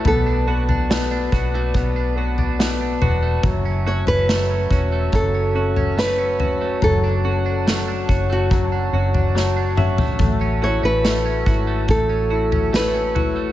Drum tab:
SD |----o-------o---|----o-------o---|----o-------o---|----o-------o---|
T2 |----------------|----------------|--------------o-|----------------|
FT |o--o----o--o--o-|o--o----o--o--o-|o-------o--o---o|o-------o--o--o-|
BD |------o-o-------|o-----o-o-------|------o-o-------|o-----o-o-------|